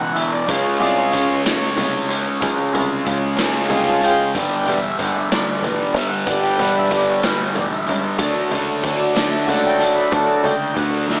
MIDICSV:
0, 0, Header, 1, 5, 480
1, 0, Start_track
1, 0, Tempo, 642398
1, 362, Time_signature, 6, 3, 24, 8
1, 8369, End_track
2, 0, Start_track
2, 0, Title_t, "Harmonium"
2, 0, Program_c, 0, 20
2, 0, Note_on_c, 0, 78, 97
2, 98, Note_on_c, 0, 76, 99
2, 116, Note_off_c, 0, 78, 0
2, 221, Note_off_c, 0, 76, 0
2, 237, Note_on_c, 0, 74, 92
2, 357, Note_on_c, 0, 56, 59
2, 361, Note_on_c, 0, 73, 93
2, 363, Note_on_c, 0, 61, 60
2, 364, Note_off_c, 0, 74, 0
2, 366, Note_on_c, 0, 65, 71
2, 463, Note_off_c, 0, 73, 0
2, 474, Note_on_c, 0, 73, 87
2, 598, Note_on_c, 0, 74, 85
2, 603, Note_off_c, 0, 73, 0
2, 725, Note_off_c, 0, 74, 0
2, 727, Note_on_c, 0, 73, 100
2, 1053, Note_off_c, 0, 56, 0
2, 1056, Note_off_c, 0, 61, 0
2, 1058, Note_off_c, 0, 65, 0
2, 1787, Note_on_c, 0, 56, 58
2, 1793, Note_on_c, 0, 61, 57
2, 1802, Note_on_c, 0, 65, 65
2, 1900, Note_off_c, 0, 73, 0
2, 2800, Note_on_c, 0, 79, 97
2, 2897, Note_on_c, 0, 81, 112
2, 2908, Note_off_c, 0, 79, 0
2, 2994, Note_off_c, 0, 56, 0
2, 2994, Note_off_c, 0, 65, 0
2, 2997, Note_off_c, 0, 61, 0
2, 3005, Note_on_c, 0, 56, 58
2, 3005, Note_on_c, 0, 65, 57
2, 3009, Note_on_c, 0, 61, 49
2, 3017, Note_off_c, 0, 81, 0
2, 3017, Note_on_c, 0, 79, 112
2, 3224, Note_off_c, 0, 56, 0
2, 3224, Note_off_c, 0, 65, 0
2, 3226, Note_off_c, 0, 61, 0
2, 3257, Note_on_c, 0, 55, 48
2, 3266, Note_on_c, 0, 62, 65
2, 3268, Note_on_c, 0, 59, 48
2, 3494, Note_on_c, 0, 76, 93
2, 3509, Note_off_c, 0, 79, 0
2, 3574, Note_off_c, 0, 55, 0
2, 3578, Note_off_c, 0, 62, 0
2, 3579, Note_off_c, 0, 59, 0
2, 3740, Note_off_c, 0, 76, 0
2, 3759, Note_on_c, 0, 78, 95
2, 3849, Note_on_c, 0, 76, 77
2, 3868, Note_off_c, 0, 78, 0
2, 3962, Note_off_c, 0, 76, 0
2, 3994, Note_on_c, 0, 74, 76
2, 4206, Note_off_c, 0, 74, 0
2, 4226, Note_on_c, 0, 62, 58
2, 4228, Note_on_c, 0, 59, 46
2, 4229, Note_on_c, 0, 55, 50
2, 4435, Note_off_c, 0, 62, 0
2, 4436, Note_off_c, 0, 59, 0
2, 4437, Note_off_c, 0, 55, 0
2, 4440, Note_on_c, 0, 76, 98
2, 4545, Note_on_c, 0, 78, 100
2, 4556, Note_off_c, 0, 76, 0
2, 4685, Note_on_c, 0, 55, 59
2, 4697, Note_on_c, 0, 62, 65
2, 4702, Note_on_c, 0, 59, 57
2, 4804, Note_on_c, 0, 79, 103
2, 4805, Note_off_c, 0, 78, 0
2, 4929, Note_on_c, 0, 78, 102
2, 4931, Note_off_c, 0, 79, 0
2, 5041, Note_off_c, 0, 78, 0
2, 5071, Note_on_c, 0, 76, 93
2, 5184, Note_off_c, 0, 76, 0
2, 5199, Note_on_c, 0, 74, 93
2, 5297, Note_off_c, 0, 74, 0
2, 5304, Note_on_c, 0, 73, 81
2, 5377, Note_off_c, 0, 55, 0
2, 5383, Note_off_c, 0, 62, 0
2, 5386, Note_off_c, 0, 59, 0
2, 5420, Note_off_c, 0, 73, 0
2, 5442, Note_on_c, 0, 71, 86
2, 5549, Note_off_c, 0, 71, 0
2, 5564, Note_on_c, 0, 73, 78
2, 5666, Note_on_c, 0, 74, 87
2, 5670, Note_off_c, 0, 73, 0
2, 5716, Note_off_c, 0, 74, 0
2, 5783, Note_on_c, 0, 76, 84
2, 5999, Note_off_c, 0, 76, 0
2, 6122, Note_on_c, 0, 57, 52
2, 6127, Note_on_c, 0, 54, 55
2, 6135, Note_on_c, 0, 62, 69
2, 6615, Note_on_c, 0, 73, 81
2, 6716, Note_on_c, 0, 74, 72
2, 6734, Note_off_c, 0, 73, 0
2, 6954, Note_on_c, 0, 76, 80
2, 6968, Note_off_c, 0, 74, 0
2, 7078, Note_on_c, 0, 78, 90
2, 7083, Note_off_c, 0, 76, 0
2, 7205, Note_off_c, 0, 78, 0
2, 7213, Note_on_c, 0, 79, 103
2, 7313, Note_on_c, 0, 81, 117
2, 7333, Note_off_c, 0, 79, 0
2, 7429, Note_on_c, 0, 83, 95
2, 7443, Note_off_c, 0, 81, 0
2, 7529, Note_off_c, 0, 54, 0
2, 7532, Note_off_c, 0, 57, 0
2, 7538, Note_off_c, 0, 62, 0
2, 7540, Note_on_c, 0, 54, 60
2, 7543, Note_on_c, 0, 57, 52
2, 7552, Note_on_c, 0, 62, 59
2, 7555, Note_on_c, 0, 81, 107
2, 7561, Note_off_c, 0, 83, 0
2, 7802, Note_on_c, 0, 79, 104
2, 7807, Note_off_c, 0, 81, 0
2, 7870, Note_off_c, 0, 54, 0
2, 7872, Note_off_c, 0, 57, 0
2, 7876, Note_off_c, 0, 62, 0
2, 8050, Note_off_c, 0, 79, 0
2, 8050, Note_on_c, 0, 78, 87
2, 8293, Note_off_c, 0, 78, 0
2, 8304, Note_on_c, 0, 76, 83
2, 8369, Note_off_c, 0, 76, 0
2, 8369, End_track
3, 0, Start_track
3, 0, Title_t, "Distorted electric guitar"
3, 0, Program_c, 1, 30
3, 0, Note_on_c, 1, 40, 84
3, 0, Note_on_c, 1, 47, 87
3, 0, Note_on_c, 1, 52, 92
3, 103, Note_off_c, 1, 52, 0
3, 112, Note_on_c, 1, 52, 74
3, 123, Note_off_c, 1, 47, 0
3, 132, Note_on_c, 1, 47, 55
3, 343, Note_off_c, 1, 52, 0
3, 345, Note_off_c, 1, 40, 0
3, 346, Note_off_c, 1, 47, 0
3, 349, Note_on_c, 1, 49, 84
3, 355, Note_on_c, 1, 56, 97
3, 364, Note_on_c, 1, 61, 107
3, 589, Note_off_c, 1, 61, 0
3, 592, Note_on_c, 1, 61, 74
3, 607, Note_off_c, 1, 56, 0
3, 610, Note_on_c, 1, 56, 59
3, 835, Note_off_c, 1, 49, 0
3, 838, Note_on_c, 1, 49, 83
3, 841, Note_off_c, 1, 56, 0
3, 844, Note_on_c, 1, 56, 85
3, 850, Note_off_c, 1, 61, 0
3, 853, Note_on_c, 1, 61, 101
3, 1073, Note_off_c, 1, 61, 0
3, 1082, Note_on_c, 1, 61, 72
3, 1083, Note_off_c, 1, 56, 0
3, 1092, Note_on_c, 1, 56, 61
3, 1310, Note_off_c, 1, 49, 0
3, 1317, Note_off_c, 1, 56, 0
3, 1319, Note_on_c, 1, 49, 75
3, 1326, Note_on_c, 1, 56, 85
3, 1327, Note_off_c, 1, 61, 0
3, 1336, Note_on_c, 1, 61, 89
3, 1546, Note_off_c, 1, 61, 0
3, 1555, Note_on_c, 1, 61, 73
3, 1562, Note_off_c, 1, 56, 0
3, 1571, Note_on_c, 1, 56, 67
3, 1788, Note_off_c, 1, 49, 0
3, 1793, Note_off_c, 1, 56, 0
3, 1797, Note_on_c, 1, 49, 91
3, 1798, Note_off_c, 1, 61, 0
3, 1802, Note_on_c, 1, 56, 91
3, 1807, Note_on_c, 1, 61, 101
3, 2037, Note_off_c, 1, 61, 0
3, 2046, Note_on_c, 1, 61, 80
3, 2051, Note_off_c, 1, 56, 0
3, 2060, Note_on_c, 1, 56, 62
3, 2272, Note_off_c, 1, 49, 0
3, 2281, Note_on_c, 1, 49, 73
3, 2282, Note_off_c, 1, 56, 0
3, 2289, Note_off_c, 1, 61, 0
3, 2291, Note_on_c, 1, 56, 79
3, 2298, Note_on_c, 1, 61, 95
3, 2505, Note_off_c, 1, 61, 0
3, 2514, Note_on_c, 1, 61, 75
3, 2524, Note_off_c, 1, 56, 0
3, 2533, Note_on_c, 1, 56, 56
3, 2747, Note_off_c, 1, 49, 0
3, 2756, Note_on_c, 1, 49, 85
3, 2757, Note_off_c, 1, 56, 0
3, 2764, Note_off_c, 1, 61, 0
3, 2766, Note_on_c, 1, 56, 87
3, 2773, Note_on_c, 1, 61, 83
3, 2994, Note_off_c, 1, 61, 0
3, 3002, Note_on_c, 1, 61, 57
3, 3009, Note_off_c, 1, 56, 0
3, 3018, Note_on_c, 1, 56, 58
3, 3229, Note_off_c, 1, 49, 0
3, 3233, Note_off_c, 1, 61, 0
3, 3240, Note_off_c, 1, 56, 0
3, 3249, Note_on_c, 1, 43, 90
3, 3257, Note_on_c, 1, 50, 90
3, 3265, Note_on_c, 1, 55, 96
3, 3483, Note_off_c, 1, 55, 0
3, 3486, Note_on_c, 1, 55, 72
3, 3497, Note_off_c, 1, 50, 0
3, 3506, Note_on_c, 1, 50, 68
3, 3711, Note_off_c, 1, 43, 0
3, 3714, Note_on_c, 1, 43, 77
3, 3719, Note_off_c, 1, 50, 0
3, 3728, Note_off_c, 1, 55, 0
3, 3728, Note_on_c, 1, 50, 85
3, 3731, Note_on_c, 1, 55, 79
3, 3947, Note_off_c, 1, 55, 0
3, 3956, Note_on_c, 1, 55, 68
3, 3962, Note_off_c, 1, 50, 0
3, 3971, Note_on_c, 1, 50, 56
3, 4195, Note_off_c, 1, 43, 0
3, 4204, Note_on_c, 1, 43, 73
3, 4207, Note_off_c, 1, 50, 0
3, 4213, Note_off_c, 1, 55, 0
3, 4216, Note_on_c, 1, 50, 95
3, 4222, Note_on_c, 1, 55, 83
3, 4446, Note_off_c, 1, 55, 0
3, 4455, Note_on_c, 1, 55, 81
3, 4460, Note_off_c, 1, 50, 0
3, 4469, Note_on_c, 1, 50, 56
3, 4674, Note_off_c, 1, 43, 0
3, 4683, Note_on_c, 1, 43, 88
3, 4685, Note_off_c, 1, 50, 0
3, 4689, Note_off_c, 1, 55, 0
3, 4694, Note_on_c, 1, 50, 97
3, 4698, Note_on_c, 1, 55, 118
3, 4924, Note_off_c, 1, 55, 0
3, 4933, Note_on_c, 1, 55, 71
3, 4938, Note_off_c, 1, 50, 0
3, 4947, Note_on_c, 1, 50, 61
3, 5150, Note_off_c, 1, 43, 0
3, 5159, Note_on_c, 1, 43, 77
3, 5161, Note_off_c, 1, 50, 0
3, 5167, Note_off_c, 1, 55, 0
3, 5170, Note_on_c, 1, 50, 93
3, 5176, Note_on_c, 1, 55, 86
3, 5398, Note_off_c, 1, 55, 0
3, 5407, Note_on_c, 1, 55, 77
3, 5412, Note_off_c, 1, 50, 0
3, 5421, Note_on_c, 1, 50, 58
3, 5644, Note_off_c, 1, 43, 0
3, 5653, Note_off_c, 1, 50, 0
3, 5654, Note_on_c, 1, 43, 84
3, 5659, Note_off_c, 1, 55, 0
3, 5662, Note_on_c, 1, 50, 80
3, 5668, Note_on_c, 1, 55, 95
3, 5876, Note_off_c, 1, 55, 0
3, 5885, Note_on_c, 1, 55, 82
3, 5888, Note_off_c, 1, 50, 0
3, 5897, Note_on_c, 1, 50, 64
3, 6108, Note_off_c, 1, 50, 0
3, 6112, Note_off_c, 1, 55, 0
3, 6116, Note_off_c, 1, 43, 0
3, 6117, Note_on_c, 1, 50, 104
3, 6130, Note_on_c, 1, 57, 107
3, 6133, Note_on_c, 1, 62, 109
3, 6364, Note_off_c, 1, 62, 0
3, 6367, Note_on_c, 1, 62, 74
3, 6380, Note_off_c, 1, 57, 0
3, 6383, Note_on_c, 1, 57, 57
3, 6602, Note_off_c, 1, 50, 0
3, 6605, Note_on_c, 1, 50, 84
3, 6610, Note_off_c, 1, 57, 0
3, 6613, Note_on_c, 1, 57, 85
3, 6618, Note_off_c, 1, 62, 0
3, 6621, Note_on_c, 1, 62, 97
3, 6826, Note_off_c, 1, 62, 0
3, 6835, Note_on_c, 1, 62, 82
3, 6847, Note_off_c, 1, 57, 0
3, 6856, Note_on_c, 1, 57, 60
3, 7072, Note_off_c, 1, 50, 0
3, 7077, Note_off_c, 1, 57, 0
3, 7081, Note_on_c, 1, 50, 80
3, 7086, Note_on_c, 1, 57, 98
3, 7089, Note_off_c, 1, 62, 0
3, 7098, Note_on_c, 1, 62, 98
3, 7315, Note_off_c, 1, 62, 0
3, 7324, Note_on_c, 1, 62, 76
3, 7335, Note_off_c, 1, 57, 0
3, 7344, Note_on_c, 1, 57, 67
3, 7555, Note_off_c, 1, 50, 0
3, 7564, Note_off_c, 1, 57, 0
3, 7564, Note_on_c, 1, 50, 91
3, 7573, Note_off_c, 1, 62, 0
3, 7573, Note_on_c, 1, 57, 102
3, 7582, Note_on_c, 1, 62, 104
3, 7789, Note_off_c, 1, 62, 0
3, 7798, Note_on_c, 1, 62, 79
3, 7805, Note_off_c, 1, 57, 0
3, 7814, Note_on_c, 1, 57, 68
3, 8020, Note_off_c, 1, 50, 0
3, 8029, Note_on_c, 1, 50, 88
3, 8031, Note_off_c, 1, 57, 0
3, 8040, Note_off_c, 1, 62, 0
3, 8040, Note_on_c, 1, 57, 89
3, 8048, Note_on_c, 1, 62, 98
3, 8263, Note_off_c, 1, 62, 0
3, 8272, Note_on_c, 1, 62, 70
3, 8278, Note_off_c, 1, 57, 0
3, 8287, Note_on_c, 1, 57, 63
3, 8369, Note_off_c, 1, 50, 0
3, 8369, Note_off_c, 1, 57, 0
3, 8369, Note_off_c, 1, 62, 0
3, 8369, End_track
4, 0, Start_track
4, 0, Title_t, "Picked electric bass"
4, 0, Program_c, 2, 34
4, 0, Note_on_c, 2, 37, 94
4, 121, Note_off_c, 2, 37, 0
4, 121, Note_on_c, 2, 38, 92
4, 231, Note_off_c, 2, 38, 0
4, 365, Note_on_c, 2, 37, 104
4, 473, Note_off_c, 2, 37, 0
4, 599, Note_on_c, 2, 36, 121
4, 820, Note_off_c, 2, 36, 0
4, 849, Note_on_c, 2, 37, 89
4, 1299, Note_off_c, 2, 37, 0
4, 1328, Note_on_c, 2, 36, 85
4, 1568, Note_off_c, 2, 36, 0
4, 1568, Note_on_c, 2, 37, 91
4, 1677, Note_off_c, 2, 37, 0
4, 1811, Note_on_c, 2, 37, 108
4, 1919, Note_off_c, 2, 37, 0
4, 2051, Note_on_c, 2, 36, 112
4, 2269, Note_off_c, 2, 36, 0
4, 2291, Note_on_c, 2, 37, 90
4, 2741, Note_off_c, 2, 37, 0
4, 2765, Note_on_c, 2, 36, 91
4, 3007, Note_off_c, 2, 36, 0
4, 3007, Note_on_c, 2, 37, 83
4, 3118, Note_off_c, 2, 37, 0
4, 3249, Note_on_c, 2, 31, 92
4, 3359, Note_off_c, 2, 31, 0
4, 3485, Note_on_c, 2, 28, 112
4, 3706, Note_off_c, 2, 28, 0
4, 3727, Note_on_c, 2, 31, 88
4, 4179, Note_off_c, 2, 31, 0
4, 4203, Note_on_c, 2, 28, 90
4, 4437, Note_off_c, 2, 28, 0
4, 4437, Note_on_c, 2, 31, 82
4, 4552, Note_off_c, 2, 31, 0
4, 4682, Note_on_c, 2, 31, 93
4, 4795, Note_off_c, 2, 31, 0
4, 4930, Note_on_c, 2, 28, 105
4, 5148, Note_off_c, 2, 28, 0
4, 5158, Note_on_c, 2, 31, 94
4, 5613, Note_off_c, 2, 31, 0
4, 5655, Note_on_c, 2, 28, 86
4, 5893, Note_off_c, 2, 28, 0
4, 5893, Note_on_c, 2, 37, 98
4, 6000, Note_off_c, 2, 37, 0
4, 6118, Note_on_c, 2, 38, 101
4, 6231, Note_off_c, 2, 38, 0
4, 6360, Note_on_c, 2, 37, 118
4, 6581, Note_off_c, 2, 37, 0
4, 6601, Note_on_c, 2, 38, 99
4, 7053, Note_off_c, 2, 38, 0
4, 7083, Note_on_c, 2, 37, 90
4, 7317, Note_off_c, 2, 37, 0
4, 7317, Note_on_c, 2, 38, 94
4, 7430, Note_off_c, 2, 38, 0
4, 7562, Note_on_c, 2, 38, 105
4, 7672, Note_off_c, 2, 38, 0
4, 7800, Note_on_c, 2, 37, 108
4, 8019, Note_off_c, 2, 37, 0
4, 8044, Note_on_c, 2, 38, 94
4, 8369, Note_off_c, 2, 38, 0
4, 8369, End_track
5, 0, Start_track
5, 0, Title_t, "Drums"
5, 118, Note_on_c, 9, 42, 78
5, 193, Note_off_c, 9, 42, 0
5, 243, Note_on_c, 9, 64, 79
5, 318, Note_off_c, 9, 64, 0
5, 361, Note_on_c, 9, 63, 88
5, 365, Note_on_c, 9, 36, 108
5, 366, Note_on_c, 9, 42, 97
5, 435, Note_off_c, 9, 63, 0
5, 439, Note_off_c, 9, 36, 0
5, 440, Note_off_c, 9, 42, 0
5, 597, Note_on_c, 9, 64, 89
5, 609, Note_on_c, 9, 42, 77
5, 672, Note_off_c, 9, 64, 0
5, 684, Note_off_c, 9, 42, 0
5, 848, Note_on_c, 9, 36, 83
5, 852, Note_on_c, 9, 42, 77
5, 923, Note_off_c, 9, 36, 0
5, 926, Note_off_c, 9, 42, 0
5, 956, Note_on_c, 9, 64, 65
5, 1031, Note_off_c, 9, 64, 0
5, 1079, Note_on_c, 9, 63, 87
5, 1088, Note_on_c, 9, 42, 99
5, 1092, Note_on_c, 9, 38, 117
5, 1154, Note_off_c, 9, 63, 0
5, 1163, Note_off_c, 9, 42, 0
5, 1166, Note_off_c, 9, 38, 0
5, 1318, Note_on_c, 9, 64, 109
5, 1329, Note_on_c, 9, 42, 70
5, 1392, Note_off_c, 9, 64, 0
5, 1404, Note_off_c, 9, 42, 0
5, 1570, Note_on_c, 9, 42, 81
5, 1645, Note_off_c, 9, 42, 0
5, 1688, Note_on_c, 9, 64, 69
5, 1763, Note_off_c, 9, 64, 0
5, 1808, Note_on_c, 9, 42, 107
5, 1809, Note_on_c, 9, 63, 97
5, 1810, Note_on_c, 9, 36, 123
5, 1883, Note_off_c, 9, 42, 0
5, 1884, Note_off_c, 9, 63, 0
5, 1885, Note_off_c, 9, 36, 0
5, 2053, Note_on_c, 9, 42, 71
5, 2055, Note_on_c, 9, 64, 102
5, 2127, Note_off_c, 9, 42, 0
5, 2130, Note_off_c, 9, 64, 0
5, 2288, Note_on_c, 9, 42, 73
5, 2291, Note_on_c, 9, 36, 82
5, 2363, Note_off_c, 9, 42, 0
5, 2366, Note_off_c, 9, 36, 0
5, 2420, Note_on_c, 9, 64, 67
5, 2494, Note_off_c, 9, 64, 0
5, 2527, Note_on_c, 9, 42, 92
5, 2531, Note_on_c, 9, 38, 105
5, 2531, Note_on_c, 9, 63, 97
5, 2602, Note_off_c, 9, 42, 0
5, 2605, Note_off_c, 9, 38, 0
5, 2606, Note_off_c, 9, 63, 0
5, 2763, Note_on_c, 9, 64, 116
5, 2769, Note_on_c, 9, 42, 70
5, 2837, Note_off_c, 9, 64, 0
5, 2844, Note_off_c, 9, 42, 0
5, 3012, Note_on_c, 9, 42, 76
5, 3086, Note_off_c, 9, 42, 0
5, 3129, Note_on_c, 9, 64, 77
5, 3203, Note_off_c, 9, 64, 0
5, 3250, Note_on_c, 9, 36, 108
5, 3250, Note_on_c, 9, 42, 96
5, 3253, Note_on_c, 9, 63, 102
5, 3324, Note_off_c, 9, 42, 0
5, 3325, Note_off_c, 9, 36, 0
5, 3328, Note_off_c, 9, 63, 0
5, 3493, Note_on_c, 9, 42, 62
5, 3501, Note_on_c, 9, 64, 93
5, 3568, Note_off_c, 9, 42, 0
5, 3576, Note_off_c, 9, 64, 0
5, 3730, Note_on_c, 9, 36, 84
5, 3733, Note_on_c, 9, 42, 77
5, 3805, Note_off_c, 9, 36, 0
5, 3808, Note_off_c, 9, 42, 0
5, 3857, Note_on_c, 9, 64, 68
5, 3932, Note_off_c, 9, 64, 0
5, 3971, Note_on_c, 9, 42, 90
5, 3975, Note_on_c, 9, 38, 122
5, 3975, Note_on_c, 9, 63, 87
5, 4046, Note_off_c, 9, 42, 0
5, 4050, Note_off_c, 9, 38, 0
5, 4050, Note_off_c, 9, 63, 0
5, 4212, Note_on_c, 9, 42, 69
5, 4213, Note_on_c, 9, 64, 102
5, 4287, Note_off_c, 9, 42, 0
5, 4288, Note_off_c, 9, 64, 0
5, 4452, Note_on_c, 9, 42, 74
5, 4527, Note_off_c, 9, 42, 0
5, 4571, Note_on_c, 9, 64, 78
5, 4646, Note_off_c, 9, 64, 0
5, 4684, Note_on_c, 9, 63, 96
5, 4685, Note_on_c, 9, 36, 109
5, 4686, Note_on_c, 9, 42, 83
5, 4759, Note_off_c, 9, 63, 0
5, 4760, Note_off_c, 9, 36, 0
5, 4760, Note_off_c, 9, 42, 0
5, 4924, Note_on_c, 9, 42, 72
5, 4925, Note_on_c, 9, 64, 106
5, 4999, Note_off_c, 9, 42, 0
5, 5000, Note_off_c, 9, 64, 0
5, 5163, Note_on_c, 9, 42, 81
5, 5164, Note_on_c, 9, 36, 85
5, 5238, Note_off_c, 9, 42, 0
5, 5239, Note_off_c, 9, 36, 0
5, 5284, Note_on_c, 9, 64, 74
5, 5358, Note_off_c, 9, 64, 0
5, 5403, Note_on_c, 9, 42, 95
5, 5404, Note_on_c, 9, 63, 89
5, 5407, Note_on_c, 9, 38, 105
5, 5478, Note_off_c, 9, 42, 0
5, 5479, Note_off_c, 9, 63, 0
5, 5482, Note_off_c, 9, 38, 0
5, 5641, Note_on_c, 9, 42, 70
5, 5642, Note_on_c, 9, 64, 120
5, 5716, Note_off_c, 9, 42, 0
5, 5717, Note_off_c, 9, 64, 0
5, 5765, Note_on_c, 9, 64, 28
5, 5840, Note_off_c, 9, 64, 0
5, 5876, Note_on_c, 9, 42, 71
5, 5951, Note_off_c, 9, 42, 0
5, 6003, Note_on_c, 9, 64, 86
5, 6077, Note_off_c, 9, 64, 0
5, 6113, Note_on_c, 9, 63, 90
5, 6115, Note_on_c, 9, 42, 104
5, 6121, Note_on_c, 9, 36, 125
5, 6188, Note_off_c, 9, 63, 0
5, 6189, Note_off_c, 9, 42, 0
5, 6196, Note_off_c, 9, 36, 0
5, 6358, Note_on_c, 9, 42, 64
5, 6360, Note_on_c, 9, 64, 88
5, 6433, Note_off_c, 9, 42, 0
5, 6435, Note_off_c, 9, 64, 0
5, 6599, Note_on_c, 9, 42, 75
5, 6603, Note_on_c, 9, 36, 82
5, 6674, Note_off_c, 9, 42, 0
5, 6678, Note_off_c, 9, 36, 0
5, 6728, Note_on_c, 9, 64, 74
5, 6803, Note_off_c, 9, 64, 0
5, 6844, Note_on_c, 9, 42, 84
5, 6848, Note_on_c, 9, 38, 116
5, 6848, Note_on_c, 9, 63, 89
5, 6919, Note_off_c, 9, 42, 0
5, 6923, Note_off_c, 9, 38, 0
5, 6923, Note_off_c, 9, 63, 0
5, 7086, Note_on_c, 9, 42, 67
5, 7161, Note_off_c, 9, 42, 0
5, 7325, Note_on_c, 9, 42, 80
5, 7399, Note_off_c, 9, 42, 0
5, 7447, Note_on_c, 9, 64, 76
5, 7522, Note_off_c, 9, 64, 0
5, 7565, Note_on_c, 9, 36, 119
5, 7567, Note_on_c, 9, 42, 86
5, 7567, Note_on_c, 9, 63, 91
5, 7640, Note_off_c, 9, 36, 0
5, 7641, Note_off_c, 9, 63, 0
5, 7642, Note_off_c, 9, 42, 0
5, 7796, Note_on_c, 9, 64, 98
5, 7810, Note_on_c, 9, 42, 65
5, 7871, Note_off_c, 9, 64, 0
5, 7885, Note_off_c, 9, 42, 0
5, 8045, Note_on_c, 9, 36, 90
5, 8045, Note_on_c, 9, 42, 66
5, 8120, Note_off_c, 9, 36, 0
5, 8120, Note_off_c, 9, 42, 0
5, 8160, Note_on_c, 9, 64, 63
5, 8234, Note_off_c, 9, 64, 0
5, 8280, Note_on_c, 9, 63, 81
5, 8291, Note_on_c, 9, 38, 59
5, 8354, Note_off_c, 9, 63, 0
5, 8365, Note_off_c, 9, 38, 0
5, 8369, End_track
0, 0, End_of_file